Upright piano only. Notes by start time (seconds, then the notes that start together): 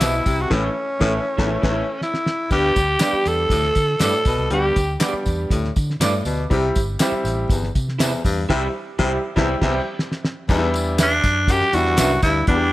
0.50 E3 A3 C#4 E4
1.00 E3 A3 C#4
1.08 E4
1.39 E3 A3 C#4
1.46 E4
1.64 E3 A3 C#4
1.71 E4
2.51 G3 B3 D4 G4
3.00 G3 B3 D4 G4
4.50 G3 B3 D4 G4
5.00 G3 B3 D4 F#4
5.08 G4
6.50 G3 C4 E4 G4
7.00 G3 C4 E4 G4
8.50 G3 C4 E4 G4
8.99 G3 C4 E4
9.07 G4
9.36 G3 C4 E4
9.44 G4
9.61 G3 C4 E4
9.69 G4
10.49 E3 G3 B3 D4 D#4
10.57 E4
11.73 E3 G3 B3 D4 E4
12.47 E3 G3 B3 D4 F#4
12.55 G4